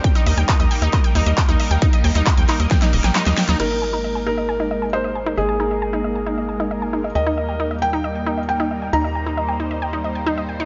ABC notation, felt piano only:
X:1
M:4/4
L:1/8
Q:1/4=135
K:Eb
V:1 name="Felt piano"
z8 | z8 | B3 B3 c2 | A8 |
e3 g3 g2 | b8 |]